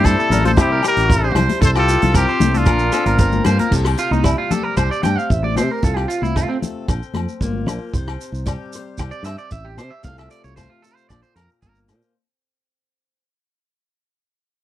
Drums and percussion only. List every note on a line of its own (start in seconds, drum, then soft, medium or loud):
0.04 kick medium
0.04 cross-stick medium
0.04 closed hi-hat soft
0.04 low agogo medium
0.04 shekere medium
0.20 shekere soft
0.32 closed hi-hat soft
0.32 high conga medium
0.32 low conga medium
0.32 shekere medium
0.45 closed hi-hat medium
0.45 high conga medium
0.45 shekere soft
0.57 kick medium
0.57 cross-stick medium
0.57 closed hi-hat medium
0.57 low agogo medium
0.57 shekere medium
0.83 cross-stick medium
0.83 closed hi-hat soft
0.83 low agogo medium
0.83 shekere medium
0.97 closed hi-hat soft
0.97 shekere soft
1.10 kick medium
1.10 closed hi-hat soft
1.10 shekere medium
1.35 cross-stick medium
1.35 closed hi-hat soft
1.35 low conga medium
1.35 low agogo medium
1.49 closed hi-hat soft
1.49 high conga medium
1.49 shekere soft
1.61 kick medium
1.61 closed hi-hat medium
1.61 shekere loud
1.75 cross-stick medium
1.75 low agogo medium
1.75 shekere soft
1.88 closed hi-hat medium
1.88 shekere medium
2.02 closed hi-hat medium
2.02 high conga medium
2.02 low conga medium
2.02 shekere soft
2.14 kick medium
2.14 cross-stick medium
2.14 closed hi-hat soft
2.14 low agogo medium
2.14 shekere loud
2.29 shekere soft
2.40 closed hi-hat medium
2.40 high conga medium
2.40 low conga medium
2.40 shekere medium
2.54 closed hi-hat soft
2.54 high conga medium
2.54 shekere soft
2.66 kick medium
2.66 cross-stick medium
2.66 closed hi-hat medium
2.66 low agogo medium
2.66 shekere medium
2.79 shekere soft
2.92 cross-stick medium
2.92 closed hi-hat soft
2.92 low agogo medium
2.92 shekere medium
3.06 closed hi-hat soft
3.06 shekere soft
3.18 kick medium
3.18 closed hi-hat soft
3.18 shekere medium
3.32 high conga medium
3.32 shekere soft
3.44 cross-stick medium
3.44 closed hi-hat soft
3.44 low conga medium
3.44 low agogo medium
3.44 shekere medium
3.59 closed hi-hat soft
3.59 high conga medium
3.59 shekere soft
3.72 kick medium
3.72 crash medium
3.72 shekere medium
3.85 cross-stick medium
3.85 low agogo medium
3.97 closed hi-hat soft
3.97 shekere medium
4.13 high conga medium
4.13 shekere soft
4.24 kick medium
4.24 cross-stick medium
4.24 low agogo medium
4.24 shekere medium
4.51 closed hi-hat soft
4.51 high conga medium
4.51 low conga medium
4.51 shekere medium
4.77 kick medium
4.77 cross-stick medium
4.77 low agogo medium
4.77 shekere medium
4.92 shekere soft
5.03 cross-stick medium
5.03 closed hi-hat soft
5.03 high conga medium
5.03 low conga medium
5.03 low agogo medium
5.03 shekere medium
5.19 shekere soft
5.30 kick medium
5.30 shekere medium
5.43 high conga medium
5.56 cross-stick medium
5.56 closed hi-hat soft
5.56 high conga medium
5.56 low conga medium
5.56 low agogo medium
5.56 shekere medium
5.83 kick medium
5.83 shekere medium
5.97 cross-stick medium
5.97 low agogo medium
6.10 closed hi-hat soft
6.10 shekere medium
6.23 high conga medium
6.23 shekere soft
6.36 kick medium
6.36 cross-stick medium
6.36 low agogo medium
6.36 shekere medium
6.62 closed hi-hat soft
6.62 high conga medium
6.62 low conga medium
6.62 shekere medium
6.88 kick medium
6.88 cross-stick medium
6.88 low agogo medium
6.88 shekere medium
7.03 shekere soft
7.14 cross-stick medium
7.14 closed hi-hat soft
7.14 high conga medium
7.14 low conga medium
7.14 low agogo medium
7.29 shekere soft
7.41 kick medium
7.41 shekere medium
7.53 high conga medium
7.66 cross-stick medium
7.66 closed hi-hat soft
7.66 high conga medium
7.66 low conga medium
7.66 low agogo medium
7.66 shekere medium
7.94 kick medium
7.94 shekere medium
8.08 cross-stick medium
8.08 low agogo medium
8.21 closed hi-hat soft
8.21 shekere medium
8.35 shekere soft
8.47 kick medium
8.47 cross-stick medium
8.47 low agogo medium
8.47 shekere medium
8.73 closed hi-hat soft
8.73 shekere medium
8.98 kick medium
8.98 cross-stick medium
8.98 low agogo medium
8.98 shekere medium
9.11 shekere soft
9.24 cross-stick medium
9.24 closed hi-hat soft
9.24 low agogo medium
9.24 shekere medium
9.38 shekere soft
9.51 kick medium
9.51 shekere medium
9.78 cross-stick medium
9.78 closed hi-hat soft
9.78 low agogo medium
9.78 shekere medium
10.04 kick medium
10.04 shekere medium
10.18 cross-stick medium
10.18 low agogo medium
10.18 shekere soft
10.30 closed hi-hat soft
10.30 shekere medium
10.44 shekere soft
10.57 kick medium
10.57 cross-stick medium
10.57 low agogo medium
10.57 shekere medium
10.84 closed hi-hat soft
10.84 shekere medium
10.97 shekere soft
11.10 kick medium
11.10 cross-stick medium
11.10 low agogo medium
11.10 shekere medium
11.23 shekere soft
11.36 cross-stick medium
11.36 closed hi-hat soft
11.36 low agogo medium
11.36 shekere medium
11.50 shekere soft
11.62 kick medium
11.62 shekere medium
11.75 shekere soft
11.88 cross-stick medium
11.88 closed hi-hat soft
11.88 low agogo medium
11.88 shekere medium
12.02 shekere soft